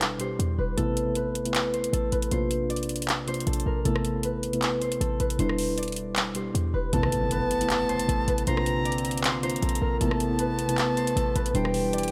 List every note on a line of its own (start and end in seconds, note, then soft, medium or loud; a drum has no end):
0.00 0.35 E1 loud
0.00 0.18 B2 loud
0.00 0.19 G3 medium
0.00 0.20 D4 medium
0.00 0.79 E4 loud
0.00 0.77 A4 medium
0.00 0.20 C5 loud
0.00 1.47 D5 medium
0.00 clap loud
0.00 closed hi-hat medium
0.18 0.64 B2 medium
0.18 0.64 G3 medium
0.18 0.64 D4 medium
0.18 0.65 G4 medium
0.18 0.64 C5 medium
0.18 closed hi-hat medium
0.39 0.58 E2 loud
0.39 closed hi-hat medium
0.58 0.77 E1 loud
0.58 1.16 B4 medium
0.77 1.89 A1 loud
0.77 1.00 C3 loud
0.77 1.00 A3 medium
0.77 1.00 B3 medium
0.77 1.00 E4 loud
0.77 1.93 A4 loud
0.77 closed hi-hat medium
0.97 closed hi-hat medium
1.06 1.36 C3 medium
1.06 1.36 A3 medium
1.06 1.36 B3 medium
1.06 1.36 E4 medium
1.15 1.80 B4 medium
1.15 closed hi-hat medium
1.35 closed hi-hat medium
1.44 2.04 C3 medium
1.44 2.04 A3 medium
1.44 2.05 B3 medium
1.44 2.05 E4 medium
1.44 closed hi-hat medium
1.55 clap loud
1.55 closed hi-hat medium
1.74 2.18 C5 medium
1.74 closed hi-hat soft
1.84 closed hi-hat medium
1.93 2.11 A1 loud
1.93 3.46 A4 medium
1.93 closed hi-hat medium
2.12 2.31 A1 loud
2.12 2.38 B4 medium
2.12 closed hi-hat medium
2.22 closed hi-hat medium
2.31 3.43 A#1 loud
2.31 2.54 C3 loud
2.31 2.54 A#3 medium
2.31 2.54 D4 medium
2.31 2.55 F4 loud
2.31 3.27 C5 loud
2.31 closed hi-hat medium
2.51 closed hi-hat medium
2.61 3.12 C3 medium
2.61 3.12 A#3 medium
2.61 3.13 D4 medium
2.61 3.13 F4 medium
2.70 4.54 D5 medium
2.70 closed hi-hat soft
2.76 closed hi-hat medium
2.83 closed hi-hat medium
2.89 closed hi-hat medium
2.96 closed hi-hat medium
3.02 closed hi-hat medium
3.09 clap loud
3.09 closed hi-hat medium
3.26 3.72 C3 medium
3.26 3.72 A#3 medium
3.26 3.72 D4 medium
3.26 3.73 F4 medium
3.26 4.30 C5 loud
3.26 closed hi-hat medium
3.34 closed hi-hat medium
3.40 closed hi-hat medium
3.47 3.65 A#1 loud
3.47 3.72 A4 medium
3.47 closed hi-hat medium
3.53 closed hi-hat medium
3.60 closed hi-hat medium
3.66 3.85 A#1 loud
3.66 3.91 A#4 medium
3.85 4.97 A1 loud
3.85 4.08 C3 loud
3.85 4.08 A3 medium
3.85 4.08 B3 medium
3.85 4.08 E4 loud
3.85 5.00 A4 loud
3.85 closed hi-hat medium
3.96 cross-stick loud
4.05 closed hi-hat medium
4.13 4.43 C3 medium
4.13 4.43 A3 medium
4.13 4.44 B3 medium
4.13 4.44 E4 medium
4.23 4.88 B4 medium
4.23 closed hi-hat medium
4.43 closed hi-hat medium
4.52 5.12 C3 medium
4.52 5.12 A3 medium
4.52 5.12 B3 medium
4.52 5.13 E4 medium
4.52 closed hi-hat medium
4.62 clap loud
4.62 closed hi-hat medium
4.82 5.26 C5 medium
4.82 closed hi-hat soft
4.92 closed hi-hat medium
5.01 5.19 A1 loud
5.01 6.93 A4 medium
5.01 closed hi-hat medium
5.20 5.38 A1 loud
5.20 5.45 B4 medium
5.20 closed hi-hat medium
5.30 closed hi-hat medium
5.38 6.51 E1 loud
5.38 5.61 B2 loud
5.38 5.61 G3 medium
5.38 5.62 D4 loud
5.38 5.62 E4 loud
5.38 6.35 C5 loud
5.38 closed hi-hat medium
5.49 cross-stick medium
5.58 open hi-hat medium
5.68 6.20 B2 medium
5.68 6.20 G3 medium
5.68 6.20 D4 medium
5.68 6.20 E4 medium
5.78 7.62 D5 medium
5.78 closed hi-hat medium
5.83 closed hi-hat medium
5.88 closed hi-hat medium
5.92 closed hi-hat medium
5.96 closed hi-hat medium
6.16 clap loud
6.16 closed hi-hat medium
6.34 6.79 B2 medium
6.34 6.80 G3 medium
6.34 6.80 D4 medium
6.34 6.80 G4 medium
6.34 6.80 C5 medium
6.34 closed hi-hat medium
6.55 6.73 E2 loud
6.55 closed hi-hat medium
6.74 6.92 E1 loud
6.74 7.32 B4 medium
6.92 8.04 A1 loud
6.92 7.15 C3 loud
6.92 8.45 C3 medium
6.92 7.15 A3 medium
6.92 8.45 A3 medium
6.92 8.45 B3 medium
6.92 7.16 B3 loud
6.92 7.16 E4 loud
6.92 8.08 A4 loud
6.92 8.43 A5 loud
6.92 closed hi-hat medium
6.92 impact medium
7.03 cross-stick loud
7.12 closed hi-hat medium
7.21 7.51 C3 medium
7.21 7.51 A3 medium
7.21 7.51 B3 medium
7.21 7.52 E4 medium
7.31 7.95 B4 medium
7.31 closed hi-hat medium
7.51 closed hi-hat medium
7.60 8.19 C3 medium
7.60 8.20 A3 medium
7.60 8.20 B3 medium
7.60 8.20 E4 medium
7.60 closed hi-hat medium
7.70 clap loud
7.70 closed hi-hat medium
7.89 8.34 C5 medium
7.89 closed hi-hat soft
7.99 closed hi-hat medium
8.09 8.27 A1 loud
8.09 9.62 A4 medium
8.09 closed hi-hat medium
8.28 8.46 A1 loud
8.28 8.53 B4 medium
8.28 closed hi-hat medium
8.38 closed hi-hat medium
8.47 9.58 A#1 loud
8.47 8.69 C3 loud
8.47 9.99 D3 medium
8.47 9.99 A#3 medium
8.47 8.70 A#3 medium
8.47 9.99 C4 medium
8.47 8.70 D4 medium
8.47 8.70 F4 loud
8.47 9.43 C5 loud
8.47 9.20 A#5 loud
8.47 closed hi-hat medium
8.57 cross-stick loud
8.66 closed hi-hat medium
8.76 9.28 C3 medium
8.76 9.28 A#3 medium
8.76 9.28 D4 medium
8.76 9.28 F4 medium
8.85 10.70 D5 medium
8.85 closed hi-hat soft
8.92 closed hi-hat medium
8.98 closed hi-hat medium
9.05 closed hi-hat medium
9.11 closed hi-hat medium
9.18 closed hi-hat medium
9.24 9.42 C6 medium
9.24 clap loud
9.24 closed hi-hat medium
9.42 9.87 C3 medium
9.42 9.87 A#3 medium
9.42 9.88 D4 medium
9.42 9.88 F4 medium
9.42 10.46 C5 loud
9.42 9.97 A#5 medium
9.42 closed hi-hat medium
9.50 closed hi-hat medium
9.56 closed hi-hat medium
9.62 9.81 A#1 loud
9.62 9.87 A4 medium
9.62 closed hi-hat medium
9.69 closed hi-hat medium
9.75 closed hi-hat medium
9.81 10.00 A#1 loud
9.81 10.07 A#4 medium
10.00 11.12 A1 loud
10.00 10.23 C3 loud
10.00 11.53 C3 medium
10.00 11.53 A3 medium
10.00 10.23 A3 medium
10.00 11.53 B3 loud
10.00 10.24 B3 medium
10.00 10.24 E4 loud
10.00 11.16 A4 loud
10.00 11.51 A5 loud
10.00 closed hi-hat medium
10.11 cross-stick loud
10.20 closed hi-hat medium
10.29 10.58 C3 medium
10.29 10.59 A3 medium
10.29 10.59 B3 medium
10.29 10.59 E4 loud
10.39 11.03 B4 medium
10.39 closed hi-hat medium
10.59 closed hi-hat medium
10.68 11.27 C3 medium
10.68 11.27 A3 medium
10.68 11.28 B3 medium
10.68 11.28 E4 medium
10.68 closed hi-hat medium
10.78 clap loud
10.78 closed hi-hat medium
10.97 11.42 C5 medium
10.97 closed hi-hat soft
11.07 closed hi-hat medium
11.16 11.35 A1 loud
11.16 12.11 A4 medium
11.16 closed hi-hat medium
11.36 11.54 A1 loud
11.36 11.61 B4 medium
11.36 closed hi-hat medium
11.46 closed hi-hat medium
11.53 12.11 E1 loud
11.53 11.76 B2 loud
11.53 12.11 E3 medium
11.53 11.77 G3 medium
11.53 11.77 D4 loud
11.53 12.11 D4 medium
11.53 11.77 E4 loud
11.53 12.11 G4 medium
11.53 12.11 C5 loud
11.53 12.11 G5 loud
11.53 closed hi-hat medium
11.65 cross-stick loud
11.74 open hi-hat medium
11.83 12.11 B2 medium
11.83 12.11 G3 medium
11.83 12.11 D4 medium
11.83 12.11 E4 medium
11.93 12.11 D5 medium
11.93 closed hi-hat medium
11.98 closed hi-hat medium
12.03 closed hi-hat medium
12.08 closed hi-hat medium